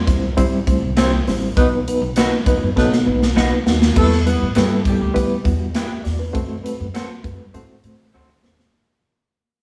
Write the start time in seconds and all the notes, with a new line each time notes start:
Already playing: E2
0.07 G3 C4 E4 C5, kick, closed hi-hat
0.22 C2
0.37 G3 C4 E4 C5, kick, closed hi-hat
0.67 D2 G3 C4 E4 C5, kick, closed hi-hat
0.82 C2
0.97 G3 C4 E4 G4 C5, snare, closed hi-hat
1.27 A1 G3 C4 E4 C5, snare, open hi-hat
1.56 B1 F#3 B3 D#4 B4, kick, closed hi-hat
1.88 F#3 B3 D#4 B4, closed hi-hat
2.01 B1
2.16 F#3 B3 D#4 F#4 B4, snare, closed hi-hat
2.46 D#2 F#3 B3 D#4 B4, kick, closed hi-hat
2.63 F#2
2.76 B2 F#3 B3 D#4 A4 B4, kick, snare
2.93 snare
3.06 B1 F#3 B3 D#4 B4
3.22 snare
3.36 B1 F#3 B3 D#4 F#4 B4, snare
3.66 D#2 F#3 B3 D#4 F#4, snare
3.82 snare
3.96 E2 G3 A3 B3 E4 A4 B4, kick, crash
4.13 snare
4.26 G3 B3 E4 B4, closed hi-hat
4.42 A2
4.55 G2 G3 A3 B3 E4 G4 A4 B4, snare, closed hi-hat
4.85 G3 B3 E4 G4 A4, kick, closed hi-hat
5.01 D2
5.14 G3 B3 E4 B4, kick, closed hi-hat
5.44 E2 G3 B3 E4 F#4, kick, closed hi-hat
5.74 B3 E4 G4 B4 E5, snare, closed hi-hat
6.04 E2 F#4 D5, snare, open hi-hat
6.19 D4 B4
6.33 F#2 A3 C4 F#4 C5, kick, closed hi-hat
6.63 A3 C4 F#4 B4, closed hi-hat
6.80 F#2
6.94 A3 C4 F#4 A4 B4 C5, snare, closed hi-hat
7.24 F#2 A3 C4 F#4 B4, kick, closed hi-hat
7.39 G2
7.54 A2 A3 C4 F#4 C5, closed hi-hat
7.84 A2 A3 C4 F#4 C5, closed hi-hat
8.14 D2 A3 C4 F#4 A4 C5
8.44 E2 A3 C4 F#4 C5, snare
8.60 snare